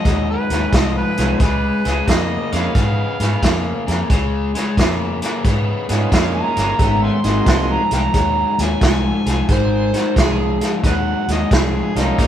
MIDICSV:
0, 0, Header, 1, 7, 480
1, 0, Start_track
1, 0, Tempo, 674157
1, 999, Time_signature, 4, 2, 24, 8
1, 8737, End_track
2, 0, Start_track
2, 0, Title_t, "Harmonica"
2, 0, Program_c, 0, 22
2, 0, Note_on_c, 0, 75, 88
2, 195, Note_off_c, 0, 75, 0
2, 214, Note_on_c, 0, 71, 76
2, 517, Note_off_c, 0, 71, 0
2, 534, Note_on_c, 0, 75, 81
2, 682, Note_off_c, 0, 75, 0
2, 692, Note_on_c, 0, 71, 87
2, 997, Note_off_c, 0, 71, 0
2, 1017, Note_on_c, 0, 71, 76
2, 1486, Note_on_c, 0, 75, 90
2, 1497, Note_off_c, 0, 71, 0
2, 1808, Note_on_c, 0, 77, 82
2, 1818, Note_off_c, 0, 75, 0
2, 2736, Note_off_c, 0, 77, 0
2, 4374, Note_on_c, 0, 77, 99
2, 4519, Note_off_c, 0, 77, 0
2, 4524, Note_on_c, 0, 82, 90
2, 4987, Note_off_c, 0, 82, 0
2, 5008, Note_on_c, 0, 77, 51
2, 5008, Note_on_c, 0, 80, 51
2, 5008, Note_on_c, 0, 84, 74
2, 5066, Note_off_c, 0, 80, 0
2, 5069, Note_off_c, 0, 77, 0
2, 5492, Note_on_c, 0, 82, 86
2, 5502, Note_off_c, 0, 84, 0
2, 5641, Note_off_c, 0, 82, 0
2, 5653, Note_on_c, 0, 77, 56
2, 5653, Note_on_c, 0, 79, 56
2, 5653, Note_on_c, 0, 82, 80
2, 5703, Note_off_c, 0, 77, 0
2, 5713, Note_off_c, 0, 79, 0
2, 6112, Note_off_c, 0, 82, 0
2, 6128, Note_on_c, 0, 80, 84
2, 6279, Note_off_c, 0, 80, 0
2, 6298, Note_on_c, 0, 80, 101
2, 6754, Note_off_c, 0, 80, 0
2, 7726, Note_on_c, 0, 71, 55
2, 7726, Note_on_c, 0, 75, 55
2, 7726, Note_on_c, 0, 78, 79
2, 7773, Note_off_c, 0, 75, 0
2, 7787, Note_off_c, 0, 71, 0
2, 8032, Note_off_c, 0, 78, 0
2, 8057, Note_on_c, 0, 75, 79
2, 8206, Note_on_c, 0, 68, 87
2, 8217, Note_off_c, 0, 75, 0
2, 8528, Note_on_c, 0, 63, 91
2, 8539, Note_off_c, 0, 68, 0
2, 8737, Note_off_c, 0, 63, 0
2, 8737, End_track
3, 0, Start_track
3, 0, Title_t, "Electric slide guitar"
3, 0, Program_c, 1, 29
3, 6776, Note_on_c, 1, 72, 89
3, 7233, Note_off_c, 1, 72, 0
3, 7259, Note_on_c, 1, 68, 84
3, 7637, Note_off_c, 1, 68, 0
3, 8737, End_track
4, 0, Start_track
4, 0, Title_t, "Tonewheel organ"
4, 0, Program_c, 2, 16
4, 838, Note_on_c, 2, 56, 66
4, 839, Note_on_c, 2, 59, 60
4, 841, Note_on_c, 2, 61, 60
4, 844, Note_on_c, 2, 63, 55
4, 846, Note_on_c, 2, 65, 72
4, 983, Note_off_c, 2, 56, 0
4, 984, Note_off_c, 2, 59, 0
4, 985, Note_off_c, 2, 61, 0
4, 986, Note_off_c, 2, 63, 0
4, 987, Note_off_c, 2, 65, 0
4, 1791, Note_on_c, 2, 56, 71
4, 1797, Note_on_c, 2, 61, 63
4, 1798, Note_on_c, 2, 63, 70
4, 1800, Note_on_c, 2, 65, 79
4, 1940, Note_off_c, 2, 56, 0
4, 1943, Note_off_c, 2, 61, 0
4, 1943, Note_off_c, 2, 63, 0
4, 1945, Note_off_c, 2, 65, 0
4, 4193, Note_on_c, 2, 56, 68
4, 4198, Note_on_c, 2, 61, 64
4, 4199, Note_on_c, 2, 63, 62
4, 4201, Note_on_c, 2, 65, 74
4, 4804, Note_off_c, 2, 56, 0
4, 4807, Note_off_c, 2, 61, 0
4, 4808, Note_off_c, 2, 63, 0
4, 4808, Note_off_c, 2, 65, 0
4, 4832, Note_on_c, 2, 57, 75
4, 4832, Note_on_c, 2, 59, 65
4, 4836, Note_on_c, 2, 61, 70
4, 4837, Note_on_c, 2, 76, 60
4, 4839, Note_on_c, 2, 67, 79
4, 5123, Note_off_c, 2, 57, 0
4, 5123, Note_off_c, 2, 59, 0
4, 5124, Note_off_c, 2, 61, 0
4, 5125, Note_off_c, 2, 76, 0
4, 5126, Note_off_c, 2, 67, 0
4, 5152, Note_on_c, 2, 56, 77
4, 5154, Note_on_c, 2, 58, 70
4, 5155, Note_on_c, 2, 60, 71
4, 5157, Note_on_c, 2, 63, 66
4, 5161, Note_on_c, 2, 66, 81
4, 5571, Note_off_c, 2, 56, 0
4, 5572, Note_off_c, 2, 58, 0
4, 5573, Note_off_c, 2, 60, 0
4, 5574, Note_off_c, 2, 63, 0
4, 5576, Note_off_c, 2, 66, 0
4, 8510, Note_on_c, 2, 55, 70
4, 8514, Note_on_c, 2, 61, 63
4, 8515, Note_on_c, 2, 58, 61
4, 8519, Note_on_c, 2, 63, 66
4, 8520, Note_on_c, 2, 65, 78
4, 8737, Note_off_c, 2, 55, 0
4, 8737, Note_off_c, 2, 58, 0
4, 8737, Note_off_c, 2, 61, 0
4, 8737, Note_off_c, 2, 63, 0
4, 8737, Note_off_c, 2, 65, 0
4, 8737, End_track
5, 0, Start_track
5, 0, Title_t, "Overdriven electric guitar"
5, 0, Program_c, 3, 29
5, 35, Note_on_c, 3, 44, 73
5, 38, Note_on_c, 3, 54, 78
5, 323, Note_off_c, 3, 44, 0
5, 325, Note_off_c, 3, 54, 0
5, 360, Note_on_c, 3, 44, 65
5, 362, Note_on_c, 3, 54, 62
5, 504, Note_off_c, 3, 44, 0
5, 505, Note_off_c, 3, 54, 0
5, 518, Note_on_c, 3, 44, 78
5, 525, Note_on_c, 3, 53, 82
5, 806, Note_off_c, 3, 44, 0
5, 809, Note_off_c, 3, 53, 0
5, 838, Note_on_c, 3, 44, 66
5, 841, Note_on_c, 3, 53, 74
5, 983, Note_off_c, 3, 44, 0
5, 985, Note_off_c, 3, 53, 0
5, 999, Note_on_c, 3, 49, 69
5, 1002, Note_on_c, 3, 56, 87
5, 1286, Note_off_c, 3, 49, 0
5, 1288, Note_off_c, 3, 56, 0
5, 1316, Note_on_c, 3, 49, 68
5, 1319, Note_on_c, 3, 56, 75
5, 1462, Note_off_c, 3, 49, 0
5, 1464, Note_off_c, 3, 56, 0
5, 1480, Note_on_c, 3, 49, 77
5, 1485, Note_on_c, 3, 58, 90
5, 1767, Note_off_c, 3, 49, 0
5, 1769, Note_off_c, 3, 58, 0
5, 1795, Note_on_c, 3, 49, 62
5, 1798, Note_on_c, 3, 58, 69
5, 1942, Note_off_c, 3, 49, 0
5, 1943, Note_off_c, 3, 58, 0
5, 1957, Note_on_c, 3, 49, 76
5, 1963, Note_on_c, 3, 59, 79
5, 2245, Note_off_c, 3, 49, 0
5, 2248, Note_off_c, 3, 59, 0
5, 2278, Note_on_c, 3, 49, 66
5, 2283, Note_on_c, 3, 59, 76
5, 2424, Note_off_c, 3, 49, 0
5, 2426, Note_off_c, 3, 59, 0
5, 2438, Note_on_c, 3, 49, 72
5, 2438, Note_on_c, 3, 58, 78
5, 2726, Note_off_c, 3, 49, 0
5, 2726, Note_off_c, 3, 58, 0
5, 2753, Note_on_c, 3, 49, 68
5, 2757, Note_on_c, 3, 58, 74
5, 2901, Note_off_c, 3, 49, 0
5, 2903, Note_off_c, 3, 58, 0
5, 2916, Note_on_c, 3, 49, 84
5, 2920, Note_on_c, 3, 56, 87
5, 3205, Note_off_c, 3, 49, 0
5, 3207, Note_off_c, 3, 56, 0
5, 3235, Note_on_c, 3, 49, 73
5, 3239, Note_on_c, 3, 56, 73
5, 3382, Note_off_c, 3, 49, 0
5, 3384, Note_off_c, 3, 56, 0
5, 3400, Note_on_c, 3, 49, 75
5, 3404, Note_on_c, 3, 58, 75
5, 3687, Note_off_c, 3, 49, 0
5, 3689, Note_off_c, 3, 58, 0
5, 3715, Note_on_c, 3, 49, 61
5, 3719, Note_on_c, 3, 58, 78
5, 3862, Note_off_c, 3, 49, 0
5, 3864, Note_off_c, 3, 58, 0
5, 3876, Note_on_c, 3, 49, 71
5, 3879, Note_on_c, 3, 59, 89
5, 4165, Note_off_c, 3, 49, 0
5, 4166, Note_off_c, 3, 59, 0
5, 4192, Note_on_c, 3, 49, 65
5, 4195, Note_on_c, 3, 59, 77
5, 4340, Note_off_c, 3, 49, 0
5, 4342, Note_off_c, 3, 59, 0
5, 4355, Note_on_c, 3, 49, 77
5, 4360, Note_on_c, 3, 58, 78
5, 4644, Note_off_c, 3, 49, 0
5, 4647, Note_off_c, 3, 58, 0
5, 4674, Note_on_c, 3, 49, 74
5, 4678, Note_on_c, 3, 58, 78
5, 4821, Note_off_c, 3, 49, 0
5, 4823, Note_off_c, 3, 58, 0
5, 4832, Note_on_c, 3, 44, 83
5, 4837, Note_on_c, 3, 51, 84
5, 5123, Note_off_c, 3, 44, 0
5, 5125, Note_off_c, 3, 51, 0
5, 5156, Note_on_c, 3, 44, 71
5, 5159, Note_on_c, 3, 51, 69
5, 5302, Note_off_c, 3, 44, 0
5, 5304, Note_off_c, 3, 51, 0
5, 5312, Note_on_c, 3, 44, 76
5, 5315, Note_on_c, 3, 53, 90
5, 5603, Note_off_c, 3, 44, 0
5, 5604, Note_off_c, 3, 53, 0
5, 5630, Note_on_c, 3, 44, 62
5, 5633, Note_on_c, 3, 53, 75
5, 5779, Note_off_c, 3, 44, 0
5, 5781, Note_off_c, 3, 53, 0
5, 5795, Note_on_c, 3, 44, 68
5, 5798, Note_on_c, 3, 54, 80
5, 6084, Note_off_c, 3, 44, 0
5, 6085, Note_off_c, 3, 54, 0
5, 6111, Note_on_c, 3, 44, 68
5, 6114, Note_on_c, 3, 54, 70
5, 6260, Note_off_c, 3, 44, 0
5, 6261, Note_off_c, 3, 54, 0
5, 6273, Note_on_c, 3, 44, 78
5, 6276, Note_on_c, 3, 53, 78
5, 6563, Note_off_c, 3, 44, 0
5, 6565, Note_off_c, 3, 53, 0
5, 6592, Note_on_c, 3, 44, 69
5, 6594, Note_on_c, 3, 53, 76
5, 6740, Note_off_c, 3, 44, 0
5, 6741, Note_off_c, 3, 53, 0
5, 6751, Note_on_c, 3, 44, 84
5, 6755, Note_on_c, 3, 51, 82
5, 7042, Note_off_c, 3, 44, 0
5, 7044, Note_off_c, 3, 51, 0
5, 7071, Note_on_c, 3, 44, 63
5, 7075, Note_on_c, 3, 51, 81
5, 7220, Note_off_c, 3, 44, 0
5, 7222, Note_off_c, 3, 51, 0
5, 7235, Note_on_c, 3, 44, 78
5, 7236, Note_on_c, 3, 53, 88
5, 7524, Note_off_c, 3, 44, 0
5, 7524, Note_off_c, 3, 53, 0
5, 7553, Note_on_c, 3, 44, 56
5, 7555, Note_on_c, 3, 53, 74
5, 7700, Note_off_c, 3, 44, 0
5, 7702, Note_off_c, 3, 53, 0
5, 7712, Note_on_c, 3, 44, 68
5, 7715, Note_on_c, 3, 54, 84
5, 8003, Note_off_c, 3, 44, 0
5, 8004, Note_off_c, 3, 54, 0
5, 8036, Note_on_c, 3, 44, 65
5, 8041, Note_on_c, 3, 54, 68
5, 8182, Note_off_c, 3, 44, 0
5, 8184, Note_off_c, 3, 54, 0
5, 8194, Note_on_c, 3, 44, 75
5, 8199, Note_on_c, 3, 53, 86
5, 8483, Note_off_c, 3, 44, 0
5, 8486, Note_off_c, 3, 53, 0
5, 8515, Note_on_c, 3, 44, 75
5, 8517, Note_on_c, 3, 53, 83
5, 8661, Note_off_c, 3, 44, 0
5, 8662, Note_off_c, 3, 53, 0
5, 8677, Note_on_c, 3, 51, 71
5, 8682, Note_on_c, 3, 58, 83
5, 8737, Note_off_c, 3, 51, 0
5, 8737, Note_off_c, 3, 58, 0
5, 8737, End_track
6, 0, Start_track
6, 0, Title_t, "Fingered electric bass"
6, 0, Program_c, 4, 33
6, 37, Note_on_c, 4, 39, 78
6, 244, Note_off_c, 4, 39, 0
6, 356, Note_on_c, 4, 39, 77
6, 461, Note_off_c, 4, 39, 0
6, 516, Note_on_c, 4, 36, 77
6, 723, Note_off_c, 4, 36, 0
6, 841, Note_on_c, 4, 36, 80
6, 944, Note_off_c, 4, 36, 0
6, 996, Note_on_c, 4, 37, 87
6, 1204, Note_off_c, 4, 37, 0
6, 1322, Note_on_c, 4, 37, 78
6, 1425, Note_off_c, 4, 37, 0
6, 1476, Note_on_c, 4, 41, 85
6, 1684, Note_off_c, 4, 41, 0
6, 1799, Note_on_c, 4, 41, 78
6, 1903, Note_off_c, 4, 41, 0
6, 1959, Note_on_c, 4, 44, 78
6, 2165, Note_off_c, 4, 44, 0
6, 2278, Note_on_c, 4, 44, 77
6, 2382, Note_off_c, 4, 44, 0
6, 2437, Note_on_c, 4, 41, 79
6, 2644, Note_off_c, 4, 41, 0
6, 2762, Note_on_c, 4, 41, 82
6, 2865, Note_off_c, 4, 41, 0
6, 2918, Note_on_c, 4, 37, 81
6, 3230, Note_off_c, 4, 37, 0
6, 3398, Note_on_c, 4, 41, 75
6, 3709, Note_off_c, 4, 41, 0
6, 3877, Note_on_c, 4, 44, 77
6, 4084, Note_off_c, 4, 44, 0
6, 4199, Note_on_c, 4, 44, 81
6, 4303, Note_off_c, 4, 44, 0
6, 4357, Note_on_c, 4, 41, 88
6, 4564, Note_off_c, 4, 41, 0
6, 4677, Note_on_c, 4, 31, 85
6, 4782, Note_off_c, 4, 31, 0
6, 4836, Note_on_c, 4, 32, 91
6, 5044, Note_off_c, 4, 32, 0
6, 5157, Note_on_c, 4, 32, 77
6, 5262, Note_off_c, 4, 32, 0
6, 5315, Note_on_c, 4, 36, 88
6, 5522, Note_off_c, 4, 36, 0
6, 5635, Note_on_c, 4, 36, 79
6, 5741, Note_off_c, 4, 36, 0
6, 5795, Note_on_c, 4, 39, 82
6, 6003, Note_off_c, 4, 39, 0
6, 6113, Note_on_c, 4, 39, 83
6, 6219, Note_off_c, 4, 39, 0
6, 6275, Note_on_c, 4, 36, 81
6, 6483, Note_off_c, 4, 36, 0
6, 6595, Note_on_c, 4, 36, 85
6, 6700, Note_off_c, 4, 36, 0
6, 6756, Note_on_c, 4, 32, 90
6, 7067, Note_off_c, 4, 32, 0
6, 7235, Note_on_c, 4, 36, 82
6, 7547, Note_off_c, 4, 36, 0
6, 7715, Note_on_c, 4, 39, 82
6, 7923, Note_off_c, 4, 39, 0
6, 8033, Note_on_c, 4, 39, 75
6, 8139, Note_off_c, 4, 39, 0
6, 8196, Note_on_c, 4, 36, 85
6, 8403, Note_off_c, 4, 36, 0
6, 8513, Note_on_c, 4, 36, 77
6, 8619, Note_off_c, 4, 36, 0
6, 8675, Note_on_c, 4, 39, 88
6, 8737, Note_off_c, 4, 39, 0
6, 8737, End_track
7, 0, Start_track
7, 0, Title_t, "Drums"
7, 37, Note_on_c, 9, 36, 75
7, 37, Note_on_c, 9, 42, 73
7, 49, Note_on_c, 9, 38, 29
7, 108, Note_off_c, 9, 36, 0
7, 108, Note_off_c, 9, 42, 0
7, 121, Note_off_c, 9, 38, 0
7, 356, Note_on_c, 9, 42, 60
7, 369, Note_on_c, 9, 38, 32
7, 428, Note_off_c, 9, 42, 0
7, 441, Note_off_c, 9, 38, 0
7, 516, Note_on_c, 9, 36, 75
7, 516, Note_on_c, 9, 42, 87
7, 528, Note_on_c, 9, 38, 98
7, 587, Note_off_c, 9, 42, 0
7, 588, Note_off_c, 9, 36, 0
7, 600, Note_off_c, 9, 38, 0
7, 836, Note_on_c, 9, 42, 60
7, 849, Note_on_c, 9, 38, 30
7, 907, Note_off_c, 9, 42, 0
7, 920, Note_off_c, 9, 38, 0
7, 994, Note_on_c, 9, 42, 80
7, 997, Note_on_c, 9, 36, 88
7, 1007, Note_on_c, 9, 38, 33
7, 1066, Note_off_c, 9, 42, 0
7, 1068, Note_off_c, 9, 36, 0
7, 1078, Note_off_c, 9, 38, 0
7, 1317, Note_on_c, 9, 42, 55
7, 1330, Note_on_c, 9, 38, 31
7, 1388, Note_off_c, 9, 42, 0
7, 1401, Note_off_c, 9, 38, 0
7, 1477, Note_on_c, 9, 42, 80
7, 1478, Note_on_c, 9, 36, 75
7, 1490, Note_on_c, 9, 38, 93
7, 1549, Note_off_c, 9, 36, 0
7, 1549, Note_off_c, 9, 42, 0
7, 1561, Note_off_c, 9, 38, 0
7, 1797, Note_on_c, 9, 42, 60
7, 1810, Note_on_c, 9, 38, 35
7, 1868, Note_off_c, 9, 42, 0
7, 1881, Note_off_c, 9, 38, 0
7, 1957, Note_on_c, 9, 42, 77
7, 1958, Note_on_c, 9, 36, 81
7, 1970, Note_on_c, 9, 38, 30
7, 2028, Note_off_c, 9, 42, 0
7, 2029, Note_off_c, 9, 36, 0
7, 2041, Note_off_c, 9, 38, 0
7, 2277, Note_on_c, 9, 42, 54
7, 2290, Note_on_c, 9, 38, 34
7, 2348, Note_off_c, 9, 42, 0
7, 2361, Note_off_c, 9, 38, 0
7, 2439, Note_on_c, 9, 36, 80
7, 2439, Note_on_c, 9, 42, 76
7, 2451, Note_on_c, 9, 38, 98
7, 2510, Note_off_c, 9, 36, 0
7, 2510, Note_off_c, 9, 42, 0
7, 2523, Note_off_c, 9, 38, 0
7, 2762, Note_on_c, 9, 42, 56
7, 2774, Note_on_c, 9, 38, 32
7, 2833, Note_off_c, 9, 42, 0
7, 2846, Note_off_c, 9, 38, 0
7, 2918, Note_on_c, 9, 42, 77
7, 2919, Note_on_c, 9, 36, 84
7, 2931, Note_on_c, 9, 38, 36
7, 2989, Note_off_c, 9, 42, 0
7, 2990, Note_off_c, 9, 36, 0
7, 3002, Note_off_c, 9, 38, 0
7, 3240, Note_on_c, 9, 42, 60
7, 3253, Note_on_c, 9, 38, 33
7, 3311, Note_off_c, 9, 42, 0
7, 3324, Note_off_c, 9, 38, 0
7, 3399, Note_on_c, 9, 36, 78
7, 3400, Note_on_c, 9, 42, 70
7, 3413, Note_on_c, 9, 38, 99
7, 3470, Note_off_c, 9, 36, 0
7, 3471, Note_off_c, 9, 42, 0
7, 3484, Note_off_c, 9, 38, 0
7, 3717, Note_on_c, 9, 42, 62
7, 3729, Note_on_c, 9, 38, 36
7, 3788, Note_off_c, 9, 42, 0
7, 3801, Note_off_c, 9, 38, 0
7, 3876, Note_on_c, 9, 42, 74
7, 3877, Note_on_c, 9, 36, 77
7, 3889, Note_on_c, 9, 38, 32
7, 3947, Note_off_c, 9, 42, 0
7, 3949, Note_off_c, 9, 36, 0
7, 3960, Note_off_c, 9, 38, 0
7, 4192, Note_on_c, 9, 42, 57
7, 4205, Note_on_c, 9, 38, 35
7, 4264, Note_off_c, 9, 42, 0
7, 4276, Note_off_c, 9, 38, 0
7, 4357, Note_on_c, 9, 36, 80
7, 4357, Note_on_c, 9, 42, 83
7, 4370, Note_on_c, 9, 38, 103
7, 4428, Note_off_c, 9, 36, 0
7, 4428, Note_off_c, 9, 42, 0
7, 4441, Note_off_c, 9, 38, 0
7, 4675, Note_on_c, 9, 42, 64
7, 4688, Note_on_c, 9, 38, 33
7, 4746, Note_off_c, 9, 42, 0
7, 4759, Note_off_c, 9, 38, 0
7, 4836, Note_on_c, 9, 36, 82
7, 4836, Note_on_c, 9, 42, 82
7, 4849, Note_on_c, 9, 38, 32
7, 4907, Note_off_c, 9, 42, 0
7, 4908, Note_off_c, 9, 36, 0
7, 4920, Note_off_c, 9, 38, 0
7, 5153, Note_on_c, 9, 42, 60
7, 5166, Note_on_c, 9, 38, 33
7, 5225, Note_off_c, 9, 42, 0
7, 5237, Note_off_c, 9, 38, 0
7, 5313, Note_on_c, 9, 42, 78
7, 5315, Note_on_c, 9, 36, 84
7, 5326, Note_on_c, 9, 38, 101
7, 5385, Note_off_c, 9, 42, 0
7, 5386, Note_off_c, 9, 36, 0
7, 5397, Note_off_c, 9, 38, 0
7, 5631, Note_on_c, 9, 42, 67
7, 5644, Note_on_c, 9, 38, 36
7, 5702, Note_off_c, 9, 42, 0
7, 5715, Note_off_c, 9, 38, 0
7, 5794, Note_on_c, 9, 42, 84
7, 5795, Note_on_c, 9, 36, 74
7, 5807, Note_on_c, 9, 38, 32
7, 5865, Note_off_c, 9, 42, 0
7, 5867, Note_off_c, 9, 36, 0
7, 5878, Note_off_c, 9, 38, 0
7, 6115, Note_on_c, 9, 42, 60
7, 6127, Note_on_c, 9, 38, 32
7, 6186, Note_off_c, 9, 42, 0
7, 6199, Note_off_c, 9, 38, 0
7, 6274, Note_on_c, 9, 42, 75
7, 6276, Note_on_c, 9, 36, 80
7, 6287, Note_on_c, 9, 38, 107
7, 6345, Note_off_c, 9, 42, 0
7, 6347, Note_off_c, 9, 36, 0
7, 6358, Note_off_c, 9, 38, 0
7, 6596, Note_on_c, 9, 42, 59
7, 6608, Note_on_c, 9, 38, 33
7, 6667, Note_off_c, 9, 42, 0
7, 6680, Note_off_c, 9, 38, 0
7, 6754, Note_on_c, 9, 42, 75
7, 6756, Note_on_c, 9, 36, 86
7, 6767, Note_on_c, 9, 38, 33
7, 6825, Note_off_c, 9, 42, 0
7, 6827, Note_off_c, 9, 36, 0
7, 6838, Note_off_c, 9, 38, 0
7, 7076, Note_on_c, 9, 42, 53
7, 7088, Note_on_c, 9, 38, 33
7, 7147, Note_off_c, 9, 42, 0
7, 7160, Note_off_c, 9, 38, 0
7, 7236, Note_on_c, 9, 36, 78
7, 7237, Note_on_c, 9, 42, 71
7, 7250, Note_on_c, 9, 38, 96
7, 7307, Note_off_c, 9, 36, 0
7, 7308, Note_off_c, 9, 42, 0
7, 7321, Note_off_c, 9, 38, 0
7, 7555, Note_on_c, 9, 42, 59
7, 7568, Note_on_c, 9, 38, 36
7, 7627, Note_off_c, 9, 42, 0
7, 7639, Note_off_c, 9, 38, 0
7, 7715, Note_on_c, 9, 36, 74
7, 7717, Note_on_c, 9, 42, 72
7, 7729, Note_on_c, 9, 38, 31
7, 7786, Note_off_c, 9, 36, 0
7, 7788, Note_off_c, 9, 42, 0
7, 7801, Note_off_c, 9, 38, 0
7, 8034, Note_on_c, 9, 42, 57
7, 8047, Note_on_c, 9, 38, 31
7, 8106, Note_off_c, 9, 42, 0
7, 8118, Note_off_c, 9, 38, 0
7, 8196, Note_on_c, 9, 36, 83
7, 8196, Note_on_c, 9, 42, 78
7, 8208, Note_on_c, 9, 38, 107
7, 8267, Note_off_c, 9, 36, 0
7, 8267, Note_off_c, 9, 42, 0
7, 8280, Note_off_c, 9, 38, 0
7, 8518, Note_on_c, 9, 42, 57
7, 8530, Note_on_c, 9, 38, 33
7, 8589, Note_off_c, 9, 42, 0
7, 8602, Note_off_c, 9, 38, 0
7, 8676, Note_on_c, 9, 36, 83
7, 8676, Note_on_c, 9, 42, 76
7, 8689, Note_on_c, 9, 38, 33
7, 8737, Note_off_c, 9, 36, 0
7, 8737, Note_off_c, 9, 38, 0
7, 8737, Note_off_c, 9, 42, 0
7, 8737, End_track
0, 0, End_of_file